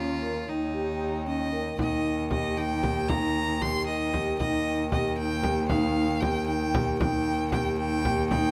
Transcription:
0.00 0.48 D#2 medium
0.00 0.17 C#4 medium
0.00 0.45 F4 medium
0.00 0.50 F4 medium
0.00 1.75 C#5 medium
0.00 0.44 A#5 medium
0.22 0.43 A#4 medium
0.48 1.76 D#2 medium
0.48 0.69 D#4 medium
0.48 1.27 D#4 medium
0.48 1.78 D#4 medium
0.48 1.78 G5 medium
0.74 1.15 G4 medium
1.26 1.47 C#4 medium
1.26 1.76 D#5 medium
1.52 1.73 A#4 medium
1.78 4.39 D#2 medium
1.78 2.20 D#4 medium
1.78 8.51 D#4 medium
1.78 8.51 A#4 medium
1.78 2.28 D#5 medium
1.78 8.51 G5 medium
1.78 frame drum medium
2.31 2.51 G4 medium
2.31 2.59 D#5 medium
2.31 frame drum medium
2.57 2.78 D#4 medium
2.57 3.11 G5 medium
2.83 3.03 G4 medium
2.83 frame drum medium
3.09 3.50 D#4 medium
3.09 3.63 A#5 loud
3.09 frame drum medium
3.61 3.82 G4 medium
3.61 3.86 C6 loud
3.61 frame drum medium
3.87 4.08 D#4 medium
3.87 4.36 D#5 medium
4.13 4.34 G4 medium
4.13 frame drum medium
4.39 7.00 D#2 medium
4.39 4.81 D#4 medium
4.39 4.88 D#5 medium
4.39 frame drum medium
4.92 5.12 G4 medium
4.92 5.16 D#5 medium
4.92 frame drum medium
5.18 5.38 D#4 medium
5.18 5.66 G5 medium
5.43 5.64 G4 medium
5.43 frame drum medium
5.69 6.11 D#4 medium
5.69 6.22 F5 medium
5.69 frame drum medium
5.96 frame drum soft
6.21 6.42 G4 medium
6.21 6.46 G5 medium
6.21 frame drum medium
6.47 6.68 D#4 medium
6.47 6.96 G5 medium
6.47 frame drum soft
6.74 6.95 G4 medium
6.74 frame drum medium
6.99 8.51 D#2 medium
6.99 7.41 D#4 medium
6.99 7.48 G5 medium
6.99 frame drum medium
7.52 7.73 G4 medium
7.52 7.77 G5 medium
7.52 frame drum medium
7.78 7.99 D#4 medium
7.78 8.27 G5 medium
8.04 8.25 G4 medium
8.04 frame drum medium
8.30 8.51 D#4 medium
8.30 8.51 G5 medium
8.30 frame drum medium

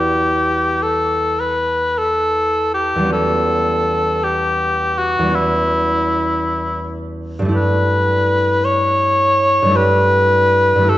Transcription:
0.00 2.94 E2 soft
0.00 2.98 G3 soft
0.00 3.01 B3 soft
0.00 3.50 E4 soft
0.00 3.07 F#4 soft
0.00 0.84 G4 medium
0.82 1.41 A4 soft
1.40 2.00 B4 medium
1.98 2.73 A4 soft
2.74 3.11 G4 medium
2.96 5.18 E2 soft
2.96 5.21 G3 soft
3.02 5.24 B3 soft
3.02 5.28 C#4 soft
3.08 5.30 F#4 soft
3.12 4.25 A4 medium
4.23 5.00 G4 medium
4.98 5.36 F#4 medium
5.19 7.51 E2 soft
5.19 7.41 G3 soft
5.25 9.15 B3 soft
5.25 7.56 C#4 soft
5.31 7.00 E4 soft
5.31 7.58 F#4 soft
7.39 9.61 G2 soft
7.39 9.64 G3 soft
7.45 9.67 A3 soft
7.45 9.70 E4 soft
7.51 9.73 G4 soft
7.51 8.66 B4 medium
8.64 9.78 C#5 medium
9.62 10.74 G2 soft
9.62 10.77 G3 soft
9.68 10.80 A3 soft
9.68 10.83 E4 soft
9.74 10.87 G4 soft
9.74 10.91 B4 medium
10.75 10.98 G2 soft
10.75 10.98 G3 soft
10.81 10.98 A3 soft
10.81 10.98 E4 soft
10.88 10.98 G4 soft
10.88 10.98 A4 medium

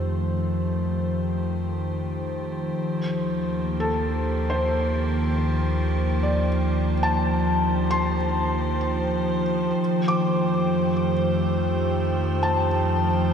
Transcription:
0.00 2.73 F2 medium
0.00 13.33 D#3 medium
0.00 13.33 F3 medium
0.00 2.78 A3 medium
0.00 13.33 G4 medium
0.00 13.33 C5 medium
2.79 9.74 D#2 medium
3.17 9.79 A#3 medium
3.80 6.93 A4 medium
4.50 6.46 C5 medium
6.23 9.42 D5 soft
7.03 8.14 A5 medium
7.91 11.11 C6 medium
9.79 13.33 F2 medium
9.79 13.33 C6 medium
10.02 13.33 A3 medium
10.08 12.67 D6 medium
12.43 13.33 A5 medium

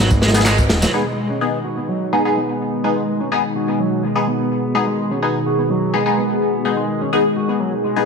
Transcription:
0.00 0.71 G#1 medium
0.00 0.89 B2 medium
0.00 0.90 D#3 medium
0.00 0.89 G#3 medium
0.00 0.92 B3 medium
0.10 kick loud
0.10 tambourine soft
0.22 0.29 G#3 medium
0.22 snare medium
0.22 ride medium
0.28 snare medium
0.28 ride medium
0.34 0.44 B3 medium
0.34 0.44 D#4 medium
0.34 0.44 G#4 loud
0.34 snare medium
0.34 ride medium
0.34 tambourine medium
0.40 snare medium
0.40 ride medium
0.45 0.57 G#3 medium
0.45 snare loud
0.45 clap loud
0.45 ride medium
0.45 tambourine medium
0.58 kick medium
0.58 tambourine soft
0.69 0.86 D#1 loud
0.69 snare loud
0.69 ride medium
0.82 0.92 F#3 medium
0.82 snare loud
0.82 ride medium
0.82 tambourine medium
0.93 8.05 B2 medium
0.93 8.05 D#3 medium
0.93 1.04 G#3 medium
0.93 8.05 G#3 medium
0.93 1.04 B3 medium
0.93 1.04 D#4 medium
0.93 4.73 D#4 medium
0.93 1.04 G#4 loud
1.05 1.28 G#3 medium
1.29 1.36 C#4 medium
1.41 1.58 B3 medium
1.41 1.58 D#4 medium
1.41 1.58 G#4 medium
1.64 1.76 F#4 medium
1.77 1.87 B3 medium
1.88 2.11 F#3 medium
2.12 2.35 G#3 medium
2.12 2.22 B3 medium
2.12 2.22 D#4 medium
2.12 2.22 G#4 medium
2.25 2.41 B3 medium
2.25 2.41 D#4 medium
2.25 2.41 G#4 medium
2.36 2.83 B3 medium
2.84 2.95 G#3 medium
2.84 3.01 B3 medium
2.84 3.01 D#4 medium
2.84 3.01 G#4 medium
2.96 3.19 G#3 medium
3.20 3.26 C#4 medium
3.32 3.42 B3 loud
3.32 3.42 D#4 medium
3.32 3.42 G#4 loud
3.56 3.67 F#4 medium
3.68 3.78 B3 medium
3.80 4.02 F#3 medium
4.03 4.26 G#3 medium
4.15 4.25 B3 medium
4.15 4.25 D#4 medium
4.15 4.25 G#4 medium
4.27 4.74 B3 medium
4.75 4.86 G#3 medium
4.75 4.85 B3 medium
4.75 4.85 D#4 medium
4.75 8.05 G#4 medium
4.75 4.85 G#4 loud
4.87 5.10 G#3 medium
5.11 5.17 C#4 medium
5.22 5.39 B3 medium
5.22 5.39 D#4 medium
5.22 5.39 G#4 medium
5.46 5.57 F#4 medium
5.59 5.69 B3 medium
5.70 5.93 F#3 medium
5.94 6.17 G#3 medium
5.94 6.03 B3 medium
5.94 6.03 D#4 medium
5.94 6.03 G#4 medium
6.06 6.22 B3 medium
6.06 6.22 D#4 medium
6.06 6.22 G#4 medium
6.18 6.64 B3 medium
6.65 6.76 G#3 medium
6.65 6.81 B3 medium
6.65 6.81 D#4 medium
6.65 6.81 G#4 medium
6.78 7.00 G#3 medium
7.01 7.07 C#4 medium
7.13 7.23 B3 medium
7.13 7.23 D#4 medium
7.13 7.23 G#4 loud
7.37 7.47 F#4 medium
7.49 7.59 B3 medium
7.60 7.71 F#3 medium
7.84 7.96 G#3 medium
7.96 8.05 B3 medium
7.96 8.05 D#4 medium
7.96 8.05 G#4 medium

